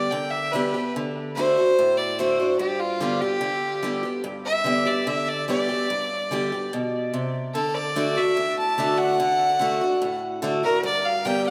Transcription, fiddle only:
0.00 0.13 D5 medium
0.11 0.33 G5 medium
0.31 0.54 E5 medium
0.53 0.93 B4 medium
1.36 1.99 C5 loud
1.98 2.20 D5 medium
2.19 2.59 C5 medium
2.60 2.82 G4 medium
2.80 3.23 F4 medium
3.21 4.02 G4 loud
4.46 4.88 E5 loud
4.87 5.10 D5 medium
5.08 5.30 E5 medium
5.29 5.48 D5 medium
5.50 6.69 D5 medium
7.54 7.76 A4 medium
7.75 8.19 D5 medium
8.18 8.57 E5 medium
8.59 9.00 A5 medium
8.98 10.19 F#5 loud
10.64 10.84 A#4 loud
10.85 11.07 D5 loud
11.05 11.27 F5 loud
11.26 11.46 G5 loud
11.47 11.50 G5 loud

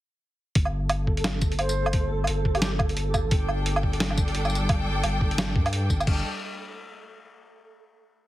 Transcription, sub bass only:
0.55 2.27 G1 loud
2.28 3.26 G1 medium
3.25 3.31 A#1 medium
3.31 5.03 G1 loud
5.04 5.57 G1 medium
5.56 5.92 G2 medium
5.90 6.06 G1 medium
6.07 6.23 G1 loud

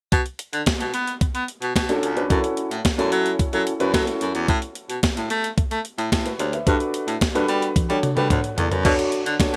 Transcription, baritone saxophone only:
0.12 0.22 B2 loud
0.53 0.62 D3 medium
0.80 0.90 B2 medium
0.94 1.13 B3 medium
1.21 1.27 B3 soft
1.35 1.44 B3 medium
1.62 1.72 B2 medium
1.76 2.04 B2 medium
2.03 2.22 C#2 medium
2.30 2.40 F#2 loud
2.71 2.81 A2 medium
2.98 3.08 F#2 medium
3.12 3.31 F#3 loud
3.39 3.45 F#3 soft
3.53 3.62 F#3 medium
3.80 3.90 F#2 medium
3.94 4.03 F#3 loud
4.21 4.31 F#2 medium
4.35 4.44 E2 medium
4.49 4.58 A2 loud
4.89 4.99 B2 medium
5.17 5.26 A2 medium
5.30 5.49 A3 loud
5.58 5.63 A3 soft
5.71 5.80 A3 medium
5.98 6.08 A2 medium
6.12 6.31 A2 medium
6.39 6.58 D2 medium
6.67 6.76 G2 loud
7.07 7.17 A2 medium
7.35 7.44 G2 medium
7.48 7.67 G3 medium
7.89 7.99 G3 medium
8.17 8.26 G3 medium
8.30 8.40 D2 medium
8.57 8.67 E2 medium
8.71 8.81 F#2 medium
8.85 8.94 B2 loud
9.26 9.35 D3 medium
9.53 9.56 B2 medium

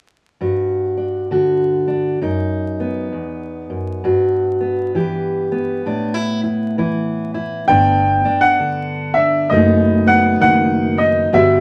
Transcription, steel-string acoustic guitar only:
0.41 2.23 G2 soft
0.41 1.31 F#4 soft
0.97 1.86 D4 soft
1.31 2.22 D3 soft
1.31 2.19 F#4 soft
1.88 2.18 D4 soft
2.21 3.12 F#2 medium
2.21 4.01 D#4 medium
2.80 4.59 B3 soft
3.12 3.69 E2 soft
3.70 4.05 F#2 soft
4.04 5.85 G2 medium
4.04 4.95 F#4 soft
4.60 5.51 B3 soft
4.95 5.82 E3 soft
4.95 5.83 G4 soft
5.52 7.67 B3 soft
5.86 7.64 A2 medium
5.86 6.14 D4 medium
6.14 6.43 E4 soft
6.44 6.78 E4 soft
6.78 7.65 E3 soft
6.78 7.33 E4 soft
7.34 7.65 E4 soft
7.68 9.51 G2 medium
7.68 9.52 B3 soft
7.68 8.24 D4 medium
8.25 9.16 D4 soft
8.59 9.51 D3 soft
9.17 9.47 D4 medium
9.52 11.29 F#2 medium
9.52 11.29 A3 soft
9.52 10.06 B3 soft
9.52 10.96 D#4 medium
10.06 11.34 B3 soft
10.41 11.28 D#3 soft
10.97 11.28 D#4 medium
11.32 11.60 G2 medium
11.32 11.60 G3 soft
11.32 11.60 B3 soft
11.32 11.60 F#4 medium

